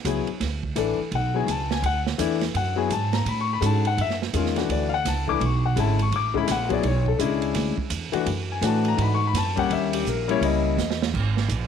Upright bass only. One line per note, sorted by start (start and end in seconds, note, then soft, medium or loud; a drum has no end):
0.05 0.26 C#2 medium
0.26 muted upright bass stroke soft
0.40 0.75 D2 medium
0.76 0.97 A1 medium
0.99 muted upright bass stroke soft
1.11 1.46 B1 loud
1.46 1.82 C#2 medium
1.82 2.18 D2 medium
2.19 2.54 E2 medium
2.54 2.89 F#2 medium
2.90 3.25 G#2 medium
3.25 3.61 A2 medium
3.61 3.96 G#2 medium
3.97 4.32 F#2 medium
4.33 4.68 E2 medium
4.69 5.04 D2 medium
5.05 5.40 C#2 medium
5.40 5.75 B1 medium
5.76 6.11 G#1 medium
6.12 6.47 A1 medium
6.47 6.83 A#1 medium
6.83 7.18 B1 medium
7.19 7.54 C#2 medium
7.55 7.76 D2 medium
7.77 muted upright bass stroke soft
7.90 8.12 E2 medium
8.13 muted upright bass stroke soft
8.26 8.61 F#2 medium
8.61 8.97 A2 medium
8.98 9.33 G#2 medium
9.33 9.69 F#2 medium
9.70 10.04 D#2 loud
10.05 10.40 A#1 medium
10.41 10.76 C#2 medium
10.77 11.12 E2 medium
11.14 11.48 G#1 medium
11.49 11.67 A#1 medium